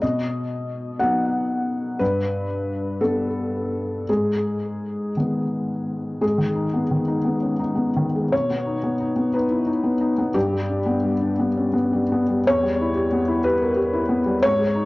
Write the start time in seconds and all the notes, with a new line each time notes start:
0.02 B2 D#5
0.99 F#3 B3 D#4 F#5
1.99 G2 B4
3.01 G3 B3 D4 A4
4.09 G#2 G#4
5.17 D#3 B3
6.21 G#2 G#4
6.38 D#3
6.55 D#4
6.74 B3
6.91 D#3
7.08 D#4
7.24 B3
7.42 C#4
7.60 D#4
7.75 B3
7.96 D#3
8.16 G#3
8.32 B2 C#5
8.50 B3
8.66 D#4
8.84 B3
9.00 D#4
9.16 B3
9.34 D#4 B4
9.51 E4
9.66 D#4
9.84 B3
10.00 D#4
10.18 B3
10.34 G2 G4
10.53 G3
10.70 D4
10.86 B3
11.04 G3
11.21 D4
11.39 B3
11.57 C#4
11.73 B3
11.93 G3
12.12 B3
12.29 G3
12.47 E2 C#5
12.63 G3
12.81 E4
12.96 G4
13.12 B3
13.28 E4
13.44 G4 B4
13.62 A#4
13.76 G4
13.93 E4
14.09 B3
14.26 G3
14.43 G#2 C#5
14.59 G#3
14.75 D#4